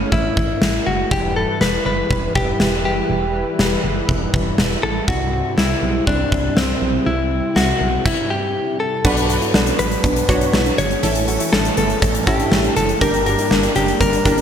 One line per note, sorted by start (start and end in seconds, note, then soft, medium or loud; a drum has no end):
0.00 1.07 A3 medium
0.00 0.12 C#4 medium
0.00 1.07 C#4 medium
0.00 1.07 E4 medium
0.12 0.29 A1 loud
0.12 0.89 E4 medium
0.12 kick medium
0.37 0.54 A1 medium
0.37 kick medium
0.62 0.79 A1 loud
0.62 snare loud
0.87 1.04 F#1 medium
0.87 1.10 F#4 medium
1.11 1.46 E1 loud
1.11 5.04 E3 medium
1.11 9.01 G3 medium
1.11 9.01 E4 medium
1.11 1.36 G4 loud
1.11 5.04 B4 medium
1.11 kick loud
1.36 1.61 A4 medium
1.61 1.78 E1 loud
1.61 1.84 B4 loud
1.61 snare loud
1.86 2.03 F#1 medium
1.86 2.32 B4 loud
2.11 2.28 E1 loud
2.11 kick medium
2.35 2.53 E1 loud
2.35 2.84 G4 loud
2.35 kick medium
2.60 2.86 E1 loud
2.60 snare loud
2.85 3.02 F#1 loud
2.85 3.80 G4 medium
3.10 3.44 E1 loud
3.59 3.76 E1 loud
3.59 snare loud
3.84 4.01 F#1 medium
4.09 4.26 E1 loud
4.09 kick medium
4.34 4.51 E1 medium
4.34 kick medium
4.58 4.76 E1 loud
4.58 snare loud
4.83 5.01 A1 medium
4.83 5.08 A4 loud
5.08 5.43 C2 loud
5.08 9.01 C3 medium
5.08 9.01 C4 medium
5.08 5.54 F#4 loud
5.08 kick loud
5.58 5.75 C2 loud
5.58 6.04 E4 medium
5.58 snare loud
5.82 6.00 B1 medium
6.07 6.25 C2 loud
6.07 6.58 D4 medium
6.07 kick medium
6.32 6.49 C2 loud
6.32 kick medium
6.57 6.74 C2 loud
6.57 7.08 C4 medium
6.57 snare loud
6.82 6.99 B1 medium
7.06 7.41 C2 loud
7.06 7.58 E4 medium
7.56 7.73 C2 loud
7.56 8.07 F#4 medium
7.56 snare loud
7.81 7.98 B1 medium
8.06 8.76 E4 medium
8.06 kick loud
8.06 crash medium
8.30 8.80 G4 medium
8.80 9.79 A4 medium
9.05 9.39 B1 loud
9.05 11.01 F#3 medium
9.05 11.01 B3 medium
9.05 9.22 D4 loud
9.05 9.91 D4 medium
9.05 11.01 D4 medium
9.05 9.91 F#4 medium
9.05 9.91 B4 medium
9.05 kick loud
9.05 crash medium
9.17 closed hi-hat medium
9.29 9.38 F#4 medium
9.29 closed hi-hat medium
9.42 9.51 E4 medium
9.42 closed hi-hat medium
9.54 9.72 B1 loud
9.54 9.63 D4 medium
9.54 snare loud
9.67 9.75 C#4 medium
9.67 closed hi-hat medium
9.79 9.97 A1 medium
9.79 9.96 B3 medium
9.79 10.78 B4 loud
9.79 closed hi-hat medium
9.91 closed hi-hat soft
10.04 10.21 B1 loud
10.04 10.21 D4 medium
10.04 kick medium
10.04 closed hi-hat medium
10.16 closed hi-hat medium
10.29 10.46 B1 loud
10.29 10.94 D4 medium
10.29 10.37 F#4 medium
10.29 10.94 F#4 medium
10.29 10.94 C#5 medium
10.29 kick medium
10.29 closed hi-hat medium
10.41 10.50 D4 medium
10.41 closed hi-hat medium
10.53 10.71 B1 medium
10.53 10.62 E4 medium
10.53 snare loud
10.66 10.83 D4 medium
10.66 closed hi-hat medium
10.78 10.96 G1 loud
10.78 11.52 C#5 loud
10.78 closed hi-hat medium
10.91 10.99 C#4 medium
10.91 closed hi-hat soft
11.03 11.38 A1 loud
11.03 12.99 E3 medium
11.03 12.99 A3 medium
11.03 11.90 C#4 medium
11.03 12.99 C#4 medium
11.03 11.90 E4 medium
11.03 11.20 E4 medium
11.03 11.90 A4 medium
11.03 closed hi-hat medium
11.15 closed hi-hat medium
11.28 11.37 F#4 medium
11.28 closed hi-hat medium
11.40 11.49 E4 medium
11.40 closed hi-hat medium
11.53 11.70 A1 loud
11.53 11.61 D4 medium
11.53 11.76 A4 loud
11.53 snare loud
11.65 11.74 C#4 medium
11.65 closed hi-hat medium
11.77 11.95 G1 loud
11.77 11.95 B3 medium
11.77 12.27 A4 loud
11.77 closed hi-hat medium
11.90 closed hi-hat soft
12.02 12.20 A1 loud
12.02 12.19 C#4 medium
12.02 kick medium
12.02 closed hi-hat medium
12.15 closed hi-hat medium
12.27 12.44 A1 loud
12.27 12.92 C#4 medium
12.27 12.92 E4 medium
12.27 12.36 E4 medium
12.27 12.73 G4 medium
12.27 12.92 A4 medium
12.27 kick loud
12.27 closed hi-hat medium
12.39 12.48 D4 medium
12.39 closed hi-hat soft
12.52 12.69 A1 loud
12.52 12.61 E4 medium
12.52 snare loud
12.64 12.82 D4 medium
12.64 closed hi-hat medium
12.76 12.94 F#1 medium
12.76 13.01 A4 medium
12.76 closed hi-hat medium
12.89 12.98 C#4 medium
12.89 closed hi-hat soft
13.01 13.36 G1 loud
13.01 14.41 G3 medium
13.01 14.41 A#3 medium
13.01 13.19 D4 loud
13.01 13.88 D4 medium
13.01 14.41 D4 medium
13.01 13.88 G4 medium
13.01 13.88 A#4 medium
13.01 13.25 A#4 loud
13.01 kick loud
13.01 closed hi-hat medium
13.14 closed hi-hat medium
13.26 13.35 F#4 medium
13.26 13.72 A#4 loud
13.26 closed hi-hat medium
13.38 13.47 E4 medium
13.38 closed hi-hat medium
13.51 13.68 G1 loud
13.51 13.60 D4 medium
13.51 snare loud
13.63 13.72 D4 medium
13.63 closed hi-hat medium
13.75 13.93 F#1 medium
13.75 13.93 C#4 medium
13.75 14.00 G4 medium
13.75 closed hi-hat medium
13.88 closed hi-hat soft
14.00 14.18 G1 loud
14.00 14.18 D4 medium
14.00 14.41 A#4 loud
14.00 kick medium
14.00 closed hi-hat medium
14.13 closed hi-hat medium
14.25 14.41 G1 medium
14.25 14.41 D4 medium
14.25 14.34 E4 medium
14.25 14.41 G4 medium
14.25 14.41 A#4 medium
14.25 kick loud
14.25 closed hi-hat medium
14.38 14.41 D4 medium
14.38 closed hi-hat medium